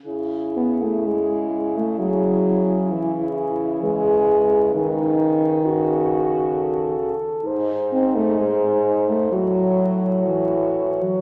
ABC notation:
X:1
M:4/4
L:1/16
Q:1/4=64
K:C#m
V:1 name="French horn"
G16 | B8- B2 z2 A4 | ^B8 c8 |]
V:2 name="French horn"
E16- | E4 D4 F6 z2 | D8 F8 |]
V:3 name="French horn" clef=bass
z2 B, A, G,3 A, F,4 E,4 | G,4 D,8- D,2 z2 | z2 ^B, A, G,3 A, F,4 E,3 F, |]
V:4 name="French horn" clef=bass
C,16- | C,8 C,6 z2 | G,,8 A,,8 |]